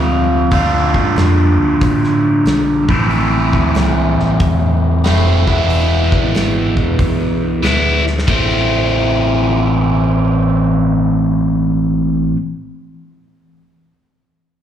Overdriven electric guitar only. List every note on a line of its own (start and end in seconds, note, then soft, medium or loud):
0.00 0.49 F3 medium
0.00 0.52 A3 medium
0.00 0.51 C4 medium
0.00 0.51 F4 medium
0.51 2.86 D3 medium
0.51 2.87 A3 medium
0.51 2.87 D4 medium
0.51 2.88 F4 medium
2.88 5.03 A2 medium
2.88 5.05 E3 medium
2.88 5.04 A3 medium
2.88 5.05 C4 medium
2.88 5.07 E4 medium
5.04 5.44 A2 medium
5.04 5.47 E3 medium
5.04 5.45 A3 medium
5.04 5.46 C4 medium
5.04 5.51 E4 medium
5.47 7.61 E3 medium
5.47 7.62 G#3 medium
5.47 7.63 B3 medium
5.47 7.64 E4 medium
7.63 8.03 E3 medium
7.63 8.03 G#3 medium
7.63 8.04 B3 medium
7.63 8.05 E4 medium
8.27 12.35 A2 medium
8.27 12.36 E3 medium
8.27 12.36 A3 medium
8.27 12.37 C4 medium
8.27 12.37 E4 medium
8.31 12.38 C5 loud